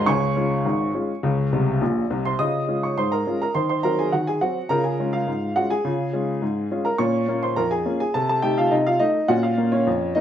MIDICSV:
0, 0, Header, 1, 2, 480
1, 0, Start_track
1, 0, Key_signature, -5, "major"
1, 0, Tempo, 576369
1, 53, Time_signature, 2, 2, 24, 8
1, 8500, End_track
2, 0, Start_track
2, 0, Title_t, "Upright piano"
2, 0, Program_c, 0, 0
2, 0, Control_c, 0, 64, 127
2, 54, Note_on_c, 0, 85, 90
2, 56, Note_on_c, 0, 49, 78
2, 57, Note_on_c, 0, 37, 64
2, 59, Control_c, 0, 64, 0
2, 64, Note_on_c, 0, 80, 69
2, 65, Note_on_c, 0, 73, 67
2, 229, Control_c, 0, 64, 127
2, 260, Note_off_c, 0, 49, 0
2, 261, Note_off_c, 0, 37, 0
2, 301, Note_on_c, 0, 56, 49
2, 305, Note_on_c, 0, 61, 50
2, 310, Note_on_c, 0, 65, 48
2, 433, Note_off_c, 0, 56, 0
2, 435, Note_off_c, 0, 61, 0
2, 439, Note_off_c, 0, 65, 0
2, 542, Note_on_c, 0, 44, 58
2, 543, Note_on_c, 0, 32, 52
2, 548, Control_c, 0, 64, 0
2, 746, Note_off_c, 0, 44, 0
2, 747, Note_off_c, 0, 32, 0
2, 788, Note_on_c, 0, 56, 44
2, 792, Note_on_c, 0, 61, 43
2, 795, Note_on_c, 0, 65, 42
2, 919, Note_off_c, 0, 56, 0
2, 922, Note_off_c, 0, 61, 0
2, 924, Note_off_c, 0, 65, 0
2, 1025, Note_on_c, 0, 49, 67
2, 1027, Note_on_c, 0, 37, 67
2, 1200, Control_c, 0, 64, 127
2, 1229, Note_off_c, 0, 49, 0
2, 1231, Note_off_c, 0, 37, 0
2, 1269, Note_on_c, 0, 36, 63
2, 1272, Note_on_c, 0, 48, 67
2, 1448, Note_off_c, 0, 36, 0
2, 1450, Note_off_c, 0, 48, 0
2, 1510, Note_on_c, 0, 34, 57
2, 1510, Note_on_c, 0, 46, 56
2, 1517, Control_c, 0, 64, 0
2, 1690, Note_off_c, 0, 34, 0
2, 1690, Note_off_c, 0, 46, 0
2, 1720, Note_off_c, 0, 73, 0
2, 1720, Note_off_c, 0, 80, 0
2, 1748, Note_off_c, 0, 85, 0
2, 1751, Note_on_c, 0, 48, 59
2, 1752, Note_on_c, 0, 36, 60
2, 1878, Note_on_c, 0, 84, 72
2, 1885, Note_on_c, 0, 72, 46
2, 1931, Note_off_c, 0, 36, 0
2, 1931, Note_off_c, 0, 48, 0
2, 1990, Note_off_c, 0, 72, 0
2, 1990, Note_on_c, 0, 87, 83
2, 1993, Note_on_c, 0, 49, 58
2, 1994, Note_off_c, 0, 84, 0
2, 1999, Note_on_c, 0, 75, 59
2, 2009, Note_on_c, 0, 65, 42
2, 2135, Note_off_c, 0, 65, 0
2, 2141, Control_c, 0, 64, 127
2, 2196, Note_off_c, 0, 49, 0
2, 2229, Note_on_c, 0, 56, 36
2, 2235, Note_on_c, 0, 61, 36
2, 2237, Note_on_c, 0, 65, 44
2, 2330, Note_off_c, 0, 75, 0
2, 2350, Note_off_c, 0, 87, 0
2, 2360, Note_on_c, 0, 85, 51
2, 2362, Note_off_c, 0, 56, 0
2, 2366, Note_off_c, 0, 61, 0
2, 2367, Note_off_c, 0, 65, 0
2, 2370, Note_on_c, 0, 73, 44
2, 2472, Note_off_c, 0, 73, 0
2, 2475, Note_off_c, 0, 85, 0
2, 2476, Control_c, 0, 64, 0
2, 2478, Note_on_c, 0, 84, 75
2, 2482, Note_on_c, 0, 44, 49
2, 2487, Note_on_c, 0, 72, 54
2, 2591, Note_off_c, 0, 72, 0
2, 2594, Note_off_c, 0, 84, 0
2, 2596, Note_on_c, 0, 82, 75
2, 2608, Note_on_c, 0, 70, 54
2, 2681, Note_off_c, 0, 44, 0
2, 2724, Note_on_c, 0, 56, 37
2, 2724, Note_on_c, 0, 61, 37
2, 2728, Note_on_c, 0, 65, 46
2, 2823, Note_off_c, 0, 70, 0
2, 2833, Note_off_c, 0, 82, 0
2, 2845, Note_on_c, 0, 82, 71
2, 2852, Note_off_c, 0, 56, 0
2, 2852, Note_off_c, 0, 61, 0
2, 2855, Note_on_c, 0, 70, 54
2, 2856, Note_off_c, 0, 65, 0
2, 2953, Note_on_c, 0, 84, 73
2, 2955, Note_off_c, 0, 70, 0
2, 2957, Note_on_c, 0, 51, 57
2, 2958, Note_off_c, 0, 82, 0
2, 2965, Note_on_c, 0, 72, 52
2, 3064, Note_off_c, 0, 84, 0
2, 3070, Note_off_c, 0, 72, 0
2, 3077, Note_on_c, 0, 84, 66
2, 3089, Note_on_c, 0, 72, 52
2, 3138, Control_c, 0, 64, 127
2, 3159, Note_off_c, 0, 51, 0
2, 3192, Note_off_c, 0, 72, 0
2, 3192, Note_on_c, 0, 82, 76
2, 3194, Note_off_c, 0, 84, 0
2, 3199, Note_on_c, 0, 54, 42
2, 3200, Note_on_c, 0, 60, 36
2, 3204, Note_on_c, 0, 70, 59
2, 3205, Note_on_c, 0, 66, 40
2, 3310, Note_off_c, 0, 70, 0
2, 3312, Note_off_c, 0, 82, 0
2, 3322, Note_on_c, 0, 80, 63
2, 3329, Note_off_c, 0, 54, 0
2, 3330, Note_off_c, 0, 60, 0
2, 3333, Note_off_c, 0, 66, 0
2, 3333, Note_on_c, 0, 68, 47
2, 3434, Note_off_c, 0, 68, 0
2, 3435, Note_on_c, 0, 78, 70
2, 3436, Note_off_c, 0, 80, 0
2, 3439, Control_c, 0, 64, 0
2, 3442, Note_on_c, 0, 51, 50
2, 3446, Note_on_c, 0, 66, 54
2, 3551, Note_off_c, 0, 66, 0
2, 3553, Note_off_c, 0, 78, 0
2, 3559, Note_on_c, 0, 80, 71
2, 3571, Note_on_c, 0, 68, 54
2, 3641, Note_off_c, 0, 51, 0
2, 3673, Note_off_c, 0, 68, 0
2, 3675, Note_off_c, 0, 80, 0
2, 3675, Note_on_c, 0, 78, 72
2, 3677, Note_on_c, 0, 54, 37
2, 3681, Note_on_c, 0, 60, 42
2, 3684, Note_on_c, 0, 66, 57
2, 3807, Note_off_c, 0, 54, 0
2, 3810, Note_off_c, 0, 60, 0
2, 3901, Note_off_c, 0, 66, 0
2, 3908, Note_on_c, 0, 82, 84
2, 3913, Note_off_c, 0, 78, 0
2, 3914, Note_on_c, 0, 49, 68
2, 3921, Note_on_c, 0, 70, 67
2, 3932, Note_on_c, 0, 65, 45
2, 4027, Note_off_c, 0, 70, 0
2, 4029, Note_off_c, 0, 82, 0
2, 4030, Note_on_c, 0, 80, 56
2, 4041, Note_on_c, 0, 68, 44
2, 4058, Note_off_c, 0, 65, 0
2, 4060, Control_c, 0, 64, 127
2, 4116, Note_off_c, 0, 49, 0
2, 4160, Note_on_c, 0, 56, 44
2, 4163, Note_on_c, 0, 61, 44
2, 4169, Note_on_c, 0, 65, 39
2, 4259, Note_off_c, 0, 68, 0
2, 4268, Note_off_c, 0, 65, 0
2, 4270, Note_off_c, 0, 80, 0
2, 4271, Note_on_c, 0, 77, 69
2, 4280, Note_on_c, 0, 65, 47
2, 4289, Note_off_c, 0, 56, 0
2, 4292, Note_off_c, 0, 61, 0
2, 4393, Note_on_c, 0, 44, 50
2, 4401, Control_c, 0, 64, 0
2, 4595, Note_off_c, 0, 44, 0
2, 4609, Note_off_c, 0, 65, 0
2, 4629, Note_on_c, 0, 78, 79
2, 4630, Note_off_c, 0, 77, 0
2, 4635, Note_on_c, 0, 56, 39
2, 4637, Note_on_c, 0, 61, 34
2, 4638, Note_on_c, 0, 66, 57
2, 4639, Note_on_c, 0, 65, 39
2, 4745, Note_off_c, 0, 66, 0
2, 4749, Note_off_c, 0, 78, 0
2, 4751, Note_on_c, 0, 80, 79
2, 4759, Note_on_c, 0, 68, 63
2, 4765, Note_off_c, 0, 56, 0
2, 4766, Note_off_c, 0, 61, 0
2, 4768, Note_off_c, 0, 65, 0
2, 4869, Note_on_c, 0, 49, 67
2, 4886, Note_on_c, 0, 65, 48
2, 5013, Note_off_c, 0, 65, 0
2, 5044, Control_c, 0, 64, 127
2, 5072, Note_off_c, 0, 49, 0
2, 5107, Note_on_c, 0, 56, 43
2, 5109, Note_on_c, 0, 61, 41
2, 5112, Note_on_c, 0, 65, 44
2, 5239, Note_off_c, 0, 56, 0
2, 5241, Note_off_c, 0, 61, 0
2, 5243, Note_off_c, 0, 65, 0
2, 5346, Note_on_c, 0, 44, 53
2, 5358, Control_c, 0, 64, 0
2, 5551, Note_off_c, 0, 44, 0
2, 5590, Note_on_c, 0, 56, 39
2, 5594, Note_on_c, 0, 61, 44
2, 5596, Note_on_c, 0, 65, 43
2, 5680, Note_off_c, 0, 68, 0
2, 5702, Note_on_c, 0, 82, 69
2, 5709, Note_off_c, 0, 80, 0
2, 5711, Note_on_c, 0, 70, 60
2, 5721, Note_off_c, 0, 56, 0
2, 5724, Note_off_c, 0, 61, 0
2, 5725, Note_off_c, 0, 65, 0
2, 5817, Note_on_c, 0, 85, 74
2, 5820, Note_on_c, 0, 46, 72
2, 5821, Note_off_c, 0, 70, 0
2, 5825, Note_off_c, 0, 82, 0
2, 5827, Note_on_c, 0, 73, 59
2, 5834, Note_on_c, 0, 61, 40
2, 5964, Note_off_c, 0, 61, 0
2, 6001, Control_c, 0, 64, 127
2, 6027, Note_off_c, 0, 46, 0
2, 6065, Note_on_c, 0, 58, 42
2, 6068, Note_on_c, 0, 61, 42
2, 6072, Note_on_c, 0, 65, 45
2, 6161, Note_off_c, 0, 73, 0
2, 6181, Note_off_c, 0, 85, 0
2, 6185, Note_on_c, 0, 84, 70
2, 6195, Note_on_c, 0, 72, 59
2, 6197, Note_off_c, 0, 58, 0
2, 6200, Note_off_c, 0, 61, 0
2, 6202, Note_off_c, 0, 65, 0
2, 6299, Note_on_c, 0, 82, 79
2, 6301, Note_on_c, 0, 41, 49
2, 6302, Note_off_c, 0, 72, 0
2, 6306, Note_off_c, 0, 84, 0
2, 6307, Note_on_c, 0, 70, 65
2, 6318, Control_c, 0, 64, 0
2, 6418, Note_off_c, 0, 70, 0
2, 6420, Note_on_c, 0, 80, 72
2, 6422, Note_off_c, 0, 82, 0
2, 6425, Note_on_c, 0, 68, 60
2, 6507, Note_off_c, 0, 41, 0
2, 6543, Note_on_c, 0, 58, 44
2, 6544, Note_on_c, 0, 61, 46
2, 6546, Note_on_c, 0, 65, 46
2, 6648, Note_off_c, 0, 68, 0
2, 6652, Note_off_c, 0, 80, 0
2, 6665, Note_on_c, 0, 80, 74
2, 6672, Note_on_c, 0, 68, 53
2, 6675, Note_off_c, 0, 58, 0
2, 6676, Note_off_c, 0, 61, 0
2, 6678, Note_off_c, 0, 65, 0
2, 6780, Note_off_c, 0, 68, 0
2, 6781, Note_on_c, 0, 81, 74
2, 6785, Note_off_c, 0, 80, 0
2, 6786, Note_on_c, 0, 48, 71
2, 6793, Note_on_c, 0, 69, 55
2, 6894, Note_off_c, 0, 81, 0
2, 6900, Note_off_c, 0, 69, 0
2, 6907, Note_on_c, 0, 81, 78
2, 6916, Note_on_c, 0, 69, 53
2, 6948, Control_c, 0, 64, 127
2, 6989, Note_off_c, 0, 48, 0
2, 7016, Note_on_c, 0, 79, 81
2, 7021, Note_on_c, 0, 57, 43
2, 7022, Note_off_c, 0, 69, 0
2, 7022, Note_on_c, 0, 63, 43
2, 7025, Note_off_c, 0, 81, 0
2, 7028, Note_on_c, 0, 67, 64
2, 7137, Note_off_c, 0, 67, 0
2, 7139, Note_off_c, 0, 79, 0
2, 7143, Note_on_c, 0, 77, 74
2, 7153, Note_off_c, 0, 57, 0
2, 7153, Note_on_c, 0, 65, 55
2, 7154, Note_off_c, 0, 63, 0
2, 7254, Note_on_c, 0, 75, 70
2, 7259, Note_on_c, 0, 48, 56
2, 7260, Note_off_c, 0, 65, 0
2, 7263, Note_off_c, 0, 77, 0
2, 7263, Note_on_c, 0, 63, 55
2, 7274, Control_c, 0, 64, 0
2, 7374, Note_off_c, 0, 63, 0
2, 7378, Note_off_c, 0, 75, 0
2, 7383, Note_on_c, 0, 77, 79
2, 7391, Note_on_c, 0, 65, 54
2, 7463, Note_off_c, 0, 48, 0
2, 7492, Note_on_c, 0, 75, 83
2, 7495, Note_on_c, 0, 57, 41
2, 7498, Note_off_c, 0, 65, 0
2, 7501, Note_on_c, 0, 63, 56
2, 7502, Note_off_c, 0, 77, 0
2, 7628, Note_off_c, 0, 57, 0
2, 7723, Note_off_c, 0, 63, 0
2, 7732, Note_on_c, 0, 78, 91
2, 7733, Note_on_c, 0, 46, 79
2, 7735, Note_off_c, 0, 75, 0
2, 7741, Note_on_c, 0, 66, 77
2, 7752, Note_on_c, 0, 61, 49
2, 7852, Note_off_c, 0, 66, 0
2, 7853, Note_on_c, 0, 77, 69
2, 7856, Note_off_c, 0, 78, 0
2, 7863, Note_on_c, 0, 65, 49
2, 7880, Note_off_c, 0, 61, 0
2, 7919, Control_c, 0, 64, 127
2, 7939, Note_off_c, 0, 46, 0
2, 7975, Note_on_c, 0, 58, 49
2, 7978, Note_on_c, 0, 61, 43
2, 8083, Note_off_c, 0, 65, 0
2, 8088, Note_off_c, 0, 61, 0
2, 8094, Note_on_c, 0, 73, 72
2, 8095, Note_off_c, 0, 77, 0
2, 8101, Note_on_c, 0, 61, 60
2, 8108, Note_off_c, 0, 58, 0
2, 8220, Note_on_c, 0, 41, 66
2, 8231, Control_c, 0, 64, 0
2, 8422, Note_off_c, 0, 41, 0
2, 8433, Note_off_c, 0, 61, 0
2, 8452, Note_on_c, 0, 75, 79
2, 8455, Note_off_c, 0, 73, 0
2, 8459, Note_on_c, 0, 58, 45
2, 8462, Note_on_c, 0, 61, 47
2, 8465, Note_on_c, 0, 63, 63
2, 8500, Note_off_c, 0, 58, 0
2, 8500, Note_off_c, 0, 61, 0
2, 8500, Note_off_c, 0, 63, 0
2, 8500, Note_off_c, 0, 75, 0
2, 8500, End_track
0, 0, End_of_file